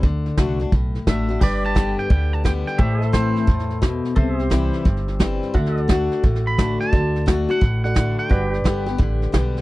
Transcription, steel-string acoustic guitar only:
0.03 0.36 D3 medium
0.37 0.59 D3 medium
0.37 0.59 A3 medium
0.37 0.59 D4 medium
0.37 0.58 F#4 medium
0.60 0.72 D4 soft
0.60 0.71 F#4 soft
0.72 1.39 A2 medium
1.07 1.28 D3 soft
1.07 1.28 A3 medium
1.07 1.29 D4 medium
1.07 1.27 F#4 medium
1.29 1.41 D4 soft
1.29 1.40 F#4 medium
1.41 2.07 G2 medium
1.75 2.08 D3 medium
1.75 2.09 G3 medium
1.75 2.09 B3 medium
1.75 2.09 G4 medium
2.10 2.43 D3 medium
2.44 2.77 D3 soft
2.44 2.78 G3 medium
2.44 2.78 B3 medium
2.44 2.78 G4 medium
2.79 3.45 A2 medium
3.12 3.46 E3 medium
3.12 3.46 A3 medium
3.12 3.47 C4 medium
3.12 3.47 E4 medium
3.47 3.81 A2 medium
3.82 4.15 B2 medium
4.16 4.83 C3 medium
4.50 4.84 E3 medium
4.50 4.84 G3 medium
4.50 4.84 C4 medium
4.50 4.85 E4 medium
4.85 5.52 G2 medium
5.19 5.53 E3 medium
5.19 5.53 G3 medium
5.19 5.53 C4 medium
5.19 5.54 E4 medium
5.54 5.87 D3 medium
5.88 6.22 D3 medium
5.88 6.22 A3 medium
5.88 6.22 D4 medium
5.88 6.23 F#4 medium
6.24 6.90 A2 medium
6.58 6.91 D3 soft
6.58 6.91 A3 soft
6.58 6.92 D4 medium
6.58 6.92 F#4 medium
6.93 7.25 D3 medium
7.26 7.48 D3 medium
7.26 7.48 A3 medium
7.26 7.48 D4 medium
7.26 7.47 F#4 medium
7.49 7.61 D4 soft
7.49 7.61 F#4 medium
7.61 8.28 A2 medium
7.94 8.28 D3 medium
7.94 8.29 A3 medium
7.94 8.29 D4 medium
7.94 8.29 F#4 medium
8.29 8.96 G2 medium
8.64 8.86 D3 medium
8.64 8.86 G3 medium
8.64 8.86 B3 medium
8.64 8.85 G4 medium
8.86 8.99 B3 soft
8.86 8.98 G4 medium
8.98 9.31 D3 medium
9.32 9.61 D3 medium
9.32 9.61 G3 medium
9.32 9.61 B3 soft
9.32 9.61 G4 medium

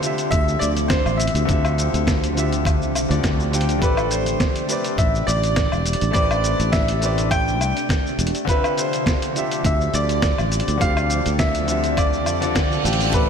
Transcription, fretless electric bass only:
0.32 0.55 D2 loud
0.62 1.00 D2 medium
1.06 1.28 A1 medium
1.34 1.45 D2 medium
1.49 1.88 D2 loud
1.94 2.95 D2 medium
2.95 3.06 C2 medium
3.10 3.20 D2 medium
3.24 3.82 D2 medium
3.82 4.35 A1 medium
4.98 5.21 A1 medium
5.28 5.66 A1 medium
5.73 5.94 E1 medium
6.02 6.12 A1 loud
6.15 6.54 A1 loud
6.60 7.60 A1 loud
7.60 7.72 C2 loud
8.19 8.31 E1 loud
9.65 9.87 D2 loud
9.94 10.32 D2 medium
10.39 10.60 A1 medium
10.68 10.78 D2 medium
10.81 11.20 D2 loud
11.26 12.26 D2 medium
12.26 12.55 F2 medium
12.55 12.78 C2 medium
12.85 13.29 A1 medium

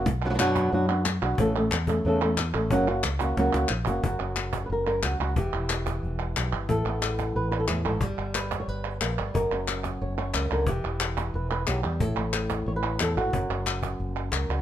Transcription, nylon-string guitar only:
0.06 muted nylon-string guitar stroke medium
0.25 0.29 F#3 soft
0.25 0.29 B3 soft
0.25 0.29 D4 medium
0.25 0.29 F#4 soft
0.30 0.33 F#3 medium
0.30 0.34 B3 medium
0.30 0.34 D4 medium
0.30 0.34 F#4 medium
0.34 0.38 F#3 medium
0.34 0.38 B3 medium
0.34 0.38 D4 medium
0.34 0.39 F#4 medium
0.39 0.71 B2 medium
0.39 0.71 F#3 medium
0.39 0.72 B3 medium
0.39 0.72 D4 medium
0.39 0.72 F#4 medium
0.72 0.88 B2 medium
0.72 0.88 F#3 medium
0.72 0.89 B3 medium
0.72 0.88 D4 medium
0.72 0.87 F#4 medium
0.88 1.04 B3 soft
0.88 1.04 D4 soft
0.88 1.04 F#4 soft
1.05 muted nylon-string guitar stroke medium
1.22 1.39 B3 soft
1.22 1.38 D4 soft
1.22 1.38 F#4 medium
1.39 1.55 C#3 medium
1.39 1.55 E3 medium
1.39 1.55 A3 medium
1.39 1.55 C#4 medium
1.39 1.54 A4 medium
1.56 1.72 A3 soft
1.56 1.72 C#4 medium
1.56 1.71 A4 soft
1.73 muted nylon-string guitar stroke medium
1.88 2.05 A3 soft
1.88 2.04 C#4 soft
1.88 2.04 A4 medium
2.06 2.21 C#3 medium
2.06 2.21 E3 medium
2.06 2.22 A3 medium
2.06 2.22 C#4 medium
2.06 2.21 A4 medium
2.22 2.38 A3 soft
2.22 2.38 C#4 soft
2.22 2.38 A4 medium
2.39 muted nylon-string guitar stroke medium
2.54 2.71 A3 soft
2.54 2.71 C#4 soft
2.54 2.70 A4 soft
2.71 2.87 C#3 medium
2.71 2.87 F#3 medium
2.71 2.88 A#3 medium
2.71 2.88 C#4 medium
2.71 2.87 F#4 medium
2.88 3.04 A#3 soft
2.88 3.04 C#4 soft
2.88 3.04 F#4 medium
3.04 muted nylon-string guitar stroke medium
3.21 3.37 A#3 soft
3.21 3.37 C#4 soft
3.21 3.37 F#4 soft
3.37 3.53 C#3 medium
3.37 3.54 F#3 medium
3.37 3.54 A#3 medium
3.37 3.53 C#4 medium
3.37 3.53 F#4 medium
3.54 3.69 A#3 soft
3.54 3.69 C#4 soft
3.54 3.70 F#4 medium
3.70 muted nylon-string guitar stroke medium
3.87 4.04 A#3 soft
3.87 4.04 C#4 soft
3.87 4.03 F#4 soft
4.03 5.36 F#2 medium
4.03 4.65 F#4 medium
4.20 5.34 C#4 soft
4.66 4.70 B4 medium
4.72 4.86 A#4 medium
4.87 5.03 A#4 medium
5.05 5.20 F#4 medium
5.21 5.37 F#4 medium
5.37 8.02 E3 medium
5.37 6.36 G4 medium
5.54 6.68 E4 soft
6.37 6.68 G4 soft
6.69 7.67 A2 medium
6.69 7.36 A4 medium
6.87 8.01 B3 soft
6.87 8.01 E4 soft
7.36 7.50 B4 medium
7.51 7.59 B4 medium
7.60 7.68 A4 medium
7.68 7.85 A2 medium
7.68 7.85 G#4 medium
7.85 8.02 G#2 soft
7.85 8.02 A4 medium
8.01 9.01 G3 medium
8.01 8.68 G4 medium
8.35 8.59 B4 medium
8.60 8.69 C#5 medium
8.69 9.34 B4 medium
9.01 9.18 A#3 medium
9.18 9.35 G3 soft
9.34 10.67 F#2 medium
9.34 10.01 A#4 medium
9.52 10.66 C#4 soft
9.52 10.66 F#4 soft
10.02 10.16 C#5 medium
10.18 10.35 C#5 medium
10.34 10.50 C#3 medium
10.34 10.51 A#4 medium
10.51 10.67 D3 medium
10.51 10.69 A#4 medium
10.67 11.67 E3 medium
10.67 11.35 G4 medium
10.86 11.99 E4 soft
11.35 11.50 B4 medium
11.51 11.68 B4 medium
11.68 11.84 F#3 medium
11.68 11.83 G4 medium
11.84 12.01 G3 medium
11.84 12.01 G4 medium
12.01 13.31 A2 medium
12.01 12.67 A4 medium
12.18 13.34 A3 soft
12.18 13.32 E4 soft
12.68 12.76 C#5 medium
12.76 13.01 B4 medium
13.02 13.17 A4 medium
13.17 14.33 F#4 medium
13.33 14.62 F#2 medium
13.33 13.50 C#4 soft
13.52 14.62 C#4 soft
14.33 14.62 A#4 soft
14.50 14.62 F#4 soft

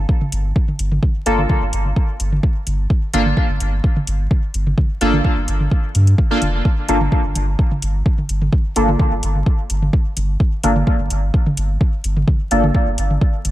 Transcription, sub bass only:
0.32 0.52 G1 medium
0.79 0.99 G1 medium
1.26 1.46 G1 loud
1.62 1.71 G1 medium
1.73 1.93 G1 medium
2.20 2.39 G1 medium
2.67 2.86 G1 medium
3.14 3.33 G1 loud
3.49 3.59 G1 medium
3.60 3.80 G1 medium
4.07 4.27 G1 medium
4.54 4.74 G1 medium
5.01 5.21 G1 loud
5.37 5.46 G1 medium
5.48 5.68 G1 medium
5.95 6.14 G2 medium
6.42 6.61 F1 medium
6.89 7.08 G1 medium
7.24 7.34 G1 medium
7.35 7.55 G1 medium
7.82 8.02 G1 medium
8.29 8.49 G1 medium
8.76 8.96 G1 loud
9.12 9.21 G1 medium
9.23 9.43 G1 medium
9.70 9.89 G1 medium
10.17 10.36 G1 medium
10.64 10.83 G1 loud
10.99 11.09 G1 medium
11.10 11.30 G1 medium
11.57 11.77 G1 medium
12.04 12.24 G1 medium
12.51 12.71 G1 medium
12.87 12.96 G1 medium
12.98 13.18 G1 medium
13.45 13.51 G1 medium

